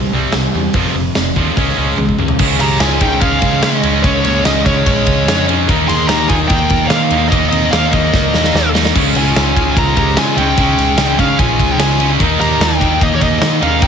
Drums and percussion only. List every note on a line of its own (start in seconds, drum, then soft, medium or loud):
0.32 snare loud
0.32 open hi-hat medium
0.74 kick loud
0.74 open hi-hat medium
1.15 snare loud
1.15 open hi-hat medium
1.36 kick medium
1.57 kick loud
1.57 open hi-hat medium
1.98 high tom medium
2.09 kick medium
2.19 mid tom medium
2.28 floor tom medium
2.39 kick loud
2.39 crash loud
2.60 snare soft
2.60 ride medium
2.80 snare loud
2.80 ride loud
3.01 kick medium
3.01 ride medium
3.21 kick loud
3.21 ride loud
3.42 kick medium
3.42 ride medium
3.63 snare loud
3.63 ride loud
3.83 ride medium
4.04 kick loud
4.04 ride loud
4.24 ride medium
4.45 snare loud
4.45 ride loud
4.66 kick medium
4.66 ride medium
4.86 kick loud
4.86 ride loud
5.06 kick medium
5.06 ride medium
5.28 snare loud
5.28 ride loud
5.49 ride medium
5.69 kick loud
5.69 ride loud
5.89 snare soft
5.89 ride medium
6.09 snare loud
6.09 ride loud
6.29 kick medium
6.29 ride medium
6.50 kick loud
6.50 ride loud
6.70 kick medium
6.70 ride medium
6.90 snare loud
6.90 ride loud
7.10 ride medium
7.32 kick loud
7.32 ride loud
7.52 ride medium
7.73 snare loud
7.73 ride loud
7.93 kick medium
7.93 ride medium
8.13 kick loud
8.13 snare medium
8.34 snare medium
8.44 snare medium
8.55 snare loud
8.75 snare loud
8.85 snare loud
8.96 kick loud
8.96 crash loud
8.96 ride loud
9.15 ride medium
9.36 snare loud
9.36 ride medium
9.56 kick loud
9.56 ride medium
9.77 kick loud
9.77 ride loud
9.97 kick medium
9.97 ride medium
10.17 snare loud
10.17 ride loud
10.38 ride medium
10.57 kick loud
10.57 ride loud
10.78 snare soft
10.78 ride medium
10.98 snare loud
10.98 ride loud
11.19 kick medium
11.19 ride medium
11.39 kick loud
11.39 ride loud
11.59 kick medium
11.59 ride medium
11.79 snare loud
11.79 ride loud
12.00 ride medium
12.20 kick loud
12.20 ride loud
12.41 snare soft
12.41 ride medium
12.61 snare loud
12.61 ride loud
12.81 kick medium
12.81 ride medium
13.01 kick loud
13.01 ride loud
13.21 kick medium
13.21 ride medium
13.42 snare loud
13.42 ride loud
13.62 ride medium
13.82 kick loud
13.82 ride loud